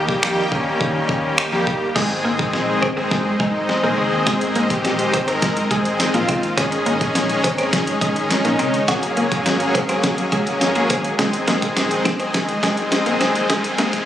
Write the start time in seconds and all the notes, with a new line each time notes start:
Already playing: D#2 A#3 G4 D#5 G5
0.08 D#3 G3 A#3 G4, kick
0.23 F2, finger snap
0.51 D#2 D#3 G3 A#3 C#4, kick
0.81 D#3, kick
1.09 D#2, kick
1.38 finger snap
1.52 F2 D#3 G3 A#3 G4
1.67 D#2, kick
1.95 G#1 D#3 G#3 C4 D#4 G#4 C5 D#5, kick, snare, crash
2.10 muted clean electric guitar stroke
2.25 G#1 A#3
2.39 D#3 G#3 C4 G#4, kick
2.53 A#1, muted clean electric guitar stroke, snare
2.82 G#1 C4, kick
2.97 D#3 G#3 C4 G#4
3.11 muted fingered electric bass stroke, kick, snare
3.26 G#2
3.40 D#3 G#3 C4 D#4, kick
3.54 G#1
3.69 muted clean electric guitar stroke, snare
3.83 A#1 D#3 G#3 A#3 C4 G#4
3.98 C#2 C4
4.12 D#2
4.27 G#1 D#3 G#3 C4 G#4, kick, snare, closed hi-hat
4.41 muted clean electric guitar stroke, closed hi-hat
4.55 G#1 A#3, closed hi-hat
4.70 D#3 G#3 C4 G4, kick, closed hi-hat
4.84 A#1, muted clean electric guitar stroke, snare, closed hi-hat
4.99 closed hi-hat
5.13 G#1 C4, kick, closed hi-hat
5.28 D#3 G#3 C4 A#4, closed hi-hat
5.42 muted fingered electric bass stroke, kick, snare, closed hi-hat
5.57 G#2, closed hi-hat
5.71 D#3 G#3 C4 G#4, kick, closed hi-hat
5.85 G#1, closed hi-hat
6.00 muted clean electric guitar stroke, snare, closed hi-hat
6.14 A#1 D#3 G#3 A#3 C4 F4, closed hi-hat
6.29 C#2 C4, kick, closed hi-hat
6.43 D#2, closed hi-hat
6.57 G#1 D#3 G#3 C#4 D#4 G#4 C#5, kick, snare, closed hi-hat
6.72 muted clean electric guitar stroke, closed hi-hat
6.86 G#1 A#3, closed hi-hat
7.01 D#3 G#3 C#4 G#4, kick, closed hi-hat
7.15 A#1, muted clean electric guitar stroke, snare, closed hi-hat
7.30 closed hi-hat
7.44 G#1 C4, kick, closed hi-hat
7.58 D#3 G#3 C4 C#4 G#4, closed hi-hat
7.73 kick, snare, closed hi-hat
7.87 G#2, closed hi-hat
8.01 D#3 G#3 C#4 G#4, kick, closed hi-hat
8.16 G#1, closed hi-hat
8.31 muted clean electric guitar stroke, snare, closed hi-hat
8.45 A#1 D#3 G#3 A#3 C#4 D#4, closed hi-hat
8.59 C2 C4, closed hi-hat
8.74 C#2, closed hi-hat
8.88 F#1 F#3 A#3 C#4 F#4 G#4 A#4 C#5, kick, snare, closed hi-hat
9.03 muted clean electric guitar stroke, closed hi-hat
9.17 F#1 A#3, closed hi-hat
9.31 F#3 A#3 C#4 G#4, kick, closed hi-hat
9.46 G#1, muted clean electric guitar stroke, snare, closed hi-hat
9.60 closed hi-hat
9.75 F#1 C4, kick, closed hi-hat
9.89 F#3 A#3 C4 C#4 G#4, closed hi-hat
10.03 kick, snare, closed hi-hat
10.18 F#2, closed hi-hat
10.32 F#3 G#3 A#3 C#4 G#4, kick, closed hi-hat
10.47 F#1, closed hi-hat
10.61 G#1, muted clean electric guitar stroke, snare, closed hi-hat
10.75 F#3 A#3 C#4 G#4, closed hi-hat
10.90 D#2 C4, kick, closed hi-hat
11.04 closed hi-hat
11.19 G#1 D#3 G#3 C4 D#4 G#4 C5 D#5, kick, snare, closed hi-hat, riser
11.33 muted clean electric guitar stroke, closed hi-hat
11.48 G#1 A#3, snare, closed hi-hat
11.62 D#3 G#3 C4 G#4, kick, closed hi-hat
11.76 A#1, muted clean electric guitar stroke, snare, closed hi-hat
11.91 closed hi-hat
12.05 G#1 C4, kick, snare, closed hi-hat
12.20 D#3 G#3 C4 G#4, closed hi-hat
12.34 kick, snare, closed hi-hat
12.49 G#2, closed hi-hat
12.63 D#3 G#3 C4 G#4, kick, snare, closed hi-hat
12.77 G#1, closed hi-hat
12.92 muted clean electric guitar stroke, snare, closed hi-hat
13.06 A#1 D#3 G#3 A#3 C4 G#4, closed hi-hat
13.21 C#2 C4, snare, closed hi-hat
13.35 D#2, closed hi-hat
13.49 G#1 D#3 G#3 C4 G#4 F5, kick, snare, closed hi-hat
13.64 muted clean electric guitar stroke, closed hi-hat
13.78 G#1 A#3, snare, closed hi-hat
13.93 D#3 G#3 C4 G#4, kick, closed hi-hat